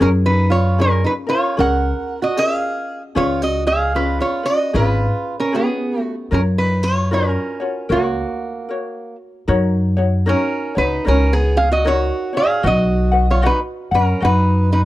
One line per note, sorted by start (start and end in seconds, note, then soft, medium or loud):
0.00 1.03 F#2 loud
0.00 0.78 C#4 medium
0.00 0.08 C#4 medium
0.00 0.79 F4 medium
0.00 0.78 G#4 medium
0.00 0.79 A#4 medium
0.00 0.08 A#4 medium
0.26 0.50 D#4 medium
0.26 0.51 B4 medium
0.50 0.78 F4 medium
0.50 0.82 C#5 medium
0.78 1.27 C#4 medium
0.78 1.02 C#4 medium
0.78 1.27 F4 medium
0.78 1.28 G#4 medium
0.78 1.25 A#4 medium
0.78 1.06 A#4 medium
1.04 1.11 D#4 medium
1.04 1.13 B4 medium
1.27 1.56 C#4 soft
1.27 1.58 F4 medium
1.27 1.57 F4 medium
1.27 1.57 A#4 medium
1.27 1.60 C#5 medium
1.57 1.90 C#2 loud
1.57 2.37 C#4 medium
1.57 2.36 G#4 medium
1.57 2.37 A#4 medium
1.57 2.19 A#4 medium
1.57 2.25 F#5 loud
2.22 2.37 F#4 medium
2.22 2.38 D#5 medium
2.36 3.15 C#4 medium
2.36 3.15 F4 medium
2.36 2.54 G4 medium
2.36 3.15 G#4 medium
2.36 3.16 A#4 medium
2.36 2.56 E5 loud
2.54 3.01 G#4 medium
2.54 3.02 F5 loud
3.15 4.19 C#2 loud
3.15 3.95 C#4 medium
3.15 3.96 F4 medium
3.15 3.42 F4 medium
3.15 3.93 G#4 medium
3.15 3.95 B4 medium
3.15 3.42 C#5 medium
3.42 3.66 F#4 medium
3.42 3.67 D#5 medium
3.67 3.94 G#4 medium
3.67 3.97 F5 loud
3.94 4.44 C#4 medium
3.94 4.18 F4 medium
3.94 4.45 F4 medium
3.94 4.43 G#4 medium
3.94 4.21 B4 medium
3.94 4.42 B4 medium
4.20 4.45 F4 medium
4.20 4.46 C#5 medium
4.43 4.73 C#4 soft
4.43 4.75 F#4 medium
4.43 4.73 B4 medium
4.43 4.76 D#5 medium
4.73 5.06 G#1 loud
4.73 5.53 C#4 medium
4.73 5.54 F4 medium
4.73 5.35 F4 medium
4.73 5.51 G#4 medium
4.73 5.53 B4 medium
4.73 5.40 B4 medium
5.40 5.53 C#4 medium
5.40 5.55 A#4 medium
5.52 6.01 B3 medium
5.52 7.11 C#4 medium
5.52 6.31 F4 medium
5.52 6.30 G#4 medium
5.52 6.01 G#4 medium
5.52 6.32 B4 medium
6.01 6.14 A3 medium
6.01 6.14 F#4 medium
6.31 7.35 F#2 medium
6.31 6.39 C#4 medium
6.31 7.10 F4 medium
6.31 7.10 A#4 medium
6.31 6.40 A#4 medium
6.31 7.12 C#5 medium
6.58 6.83 D#4 medium
6.58 6.83 B4 medium
6.83 7.12 F4 medium
6.83 7.13 C#5 medium
7.11 7.87 C#4 medium
7.11 7.60 F4 medium
7.11 7.60 F#4 medium
7.11 7.60 A#4 medium
7.11 7.88 A#4 medium
7.11 7.59 C#5 medium
7.60 7.90 F4 soft
7.60 7.89 F#4 soft
7.60 7.89 C#5 soft
7.89 8.22 C#2 medium
7.89 9.15 A#3 medium
7.89 8.70 F#4 medium
7.89 9.15 F#4 medium
7.89 8.68 A#4 medium
7.89 8.71 C#5 medium
8.69 9.47 F#4 medium
8.69 9.48 A#4 medium
8.69 9.48 C#5 medium
9.48 10.31 F#2 loud
9.48 9.97 D#4 medium
9.48 9.97 F#4 loud
9.48 9.97 A#4 medium
9.48 9.95 C#5 medium
9.97 10.25 D#4 medium
9.97 10.26 F#4 medium
9.97 10.26 C#5 medium
10.26 10.74 C#4 medium
10.26 10.75 D#4 medium
10.26 10.75 F#4 medium
10.26 10.76 A#4 medium
10.26 10.74 A#4 medium
10.26 10.74 C#5 medium
10.75 10.96 C#2 medium
10.75 11.04 D#4 soft
10.75 11.05 D#4 medium
10.75 11.05 F#4 soft
10.75 11.08 B4 medium
10.75 11.05 C#5 medium
11.04 12.10 C#2 medium
11.04 11.33 C#4 medium
11.04 11.85 D#4 medium
11.04 11.85 F#4 medium
11.04 11.83 A#4 medium
11.04 11.33 A#4 medium
11.04 11.84 C#5 medium
11.33 11.56 B3 medium
11.33 11.57 G#4 medium
11.57 11.70 G#4 medium
11.57 11.72 F5 medium
11.72 11.85 F#4 medium
11.72 11.87 D#5 medium
11.85 12.33 D#4 medium
11.85 12.33 F#4 medium
11.85 12.32 F#4 medium
11.85 12.34 A#4 medium
11.85 12.32 C#5 medium
11.85 12.37 C#5 medium
12.33 12.63 D#4 soft
12.33 12.62 F#4 soft
12.33 12.64 G#4 medium
12.33 12.64 C#5 medium
12.37 12.67 F5 medium
12.63 13.47 B1 loud
12.63 13.12 F#4 medium
12.63 13.25 F#4 medium
12.63 13.12 B4 medium
12.63 13.13 D#5 medium
12.63 13.31 D#5 medium
12.63 13.10 F#5 medium
13.12 13.42 F#4 soft
13.12 13.42 B4 medium
13.12 13.42 F#5 medium
13.30 13.43 F4 medium
13.30 13.44 C#5 medium
13.42 13.58 D#4 medium
13.42 13.92 F#4 medium
13.42 13.92 B4 medium
13.42 13.92 D#5 medium
13.42 13.90 F#5 medium
13.46 13.59 B4 medium
13.91 14.11 F#2 medium
13.91 14.21 C#4 medium
13.91 14.20 F#4 soft
13.91 14.24 A#4 medium
13.91 14.22 F#5 medium
14.20 14.85 F#2 medium
14.20 14.85 F#4 medium
14.20 14.85 B4 medium
14.20 14.85 D#5 medium
14.20 14.85 F#5 medium
14.25 14.69 D#4 medium
14.25 14.72 B4 loud
14.72 14.80 D#4 medium
14.72 14.81 B4 medium